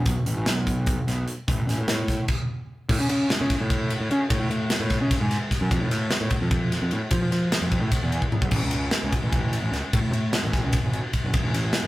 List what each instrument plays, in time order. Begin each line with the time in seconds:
0.06 picked electric bass B1, kick, closed hi-hat
0.26 picked electric bass A1, closed hi-hat
0.37 picked electric bass A1
0.46 picked electric bass B1, snare, closed hi-hat
0.67 kick, closed hi-hat
0.86 kick, closed hi-hat
1.07 picked electric bass B1, snare, closed hi-hat
1.28 closed hi-hat
1.48 picked electric bass A1, kick, closed hi-hat
1.67 picked electric bass A1, snare, closed hi-hat
1.78 picked electric bass A2
1.88 picked electric bass A2, snare, closed hi-hat
2.08 kick, snare, closed hi-hat
2.28 kick, crash
2.89 picked electric bass A2, kick, crash
3.00 picked electric bass C#3
3.09 picked electric bass C#3, ride
3.30 snare, ride
3.41 picked electric bass C#3
3.50 kick, snare, ride
3.61 picked electric bass A2
3.70 kick, ride
3.90 ride
4.01 picked electric bass A2
4.11 picked electric bass C#3, ride
4.30 picked electric bass A2, kick, ride
4.40 picked electric bass A2
4.50 picked electric bass A2, ride
4.70 snare, ride
4.80 picked electric bass A2
4.90 kick, snare, ride
5.01 picked electric bass C#3
5.11 kick, snare, ride
5.20 picked electric bass G#2
5.31 snare, ride
5.51 kick, snare, ride
5.61 picked electric bass F#2
5.71 picked electric bass F2, kick, ride
5.81 picked electric bass A2
5.91 picked electric bass A2, snare, ride
6.10 snare, ride
6.21 picked electric bass A2
6.30 kick, ride
6.41 picked electric bass F2
6.51 kick, ride
6.72 snare, ride
6.82 picked electric bass F2
6.91 picked electric bass A2, ride
7.11 picked electric bass F3, kick, ride
7.22 picked electric bass F3
7.32 picked electric bass F3, snare, ride
7.52 snare, ride
7.61 picked electric bass F2
7.72 kick, ride
7.81 picked electric bass A2
7.92 kick, snare, ride
8.03 picked electric bass E2
8.12 ride
8.22 kick
8.32 mid tom
8.41 picked electric bass B1, kick
8.51 picked electric bass A1, kick, crash
8.63 picked electric bass C#2
8.71 picked electric bass C#2, ride
8.91 snare, ride
9.03 picked electric bass C#2
9.13 kick, ride
9.22 picked electric bass A1
9.33 kick, ride
9.53 ride
9.62 picked electric bass A1
9.71 picked electric bass C#2, snare, ride
9.93 picked electric bass A2, kick, ride
10.01 picked electric bass A2
10.12 picked electric bass A2, ride
10.33 snare, ride
10.44 picked electric bass A1
10.53 kick, snare, ride
10.64 picked electric bass C#2
10.73 kick, snare, ride
10.83 picked electric bass G#1
10.93 ride
11.13 kick, ride
11.24 picked electric bass F#1
11.34 picked electric bass F1, kick, ride
11.43 picked electric bass A1
11.54 picked electric bass A1, snare, ride
11.73 snare, ride
11.84 picked electric bass A1